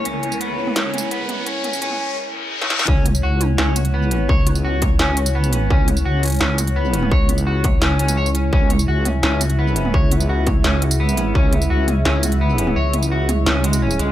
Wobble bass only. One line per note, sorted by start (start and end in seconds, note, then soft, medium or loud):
0.06 0.40 C#2 medium
0.41 0.75 C#2 medium
0.76 1.25 C#2 loud
1.25 1.45 C2 loud
1.47 2.16 C#2 medium
2.88 3.22 C#2 loud
3.23 3.57 C#2 loud
3.59 4.28 C#2 loud
4.29 4.98 C#2 medium
5.00 5.69 C#2 loud
5.70 6.04 C#2 loud
6.06 6.40 C#2 medium
6.41 7.10 C#2 loud
7.12 7.81 C#2 loud
7.82 8.51 C#2 loud
8.53 8.87 C#2 loud
8.88 9.22 C#2 loud
9.23 9.92 C#2 loud
9.94 10.63 C#2 loud
10.64 11.34 C#2 loud
11.35 11.69 C#2 loud
11.70 12.04 C#2 loud
12.06 12.75 C#2 loud
12.76 13.45 C#2 medium
13.47 13.98 C#2 loud
13.99 14.12 C#2 medium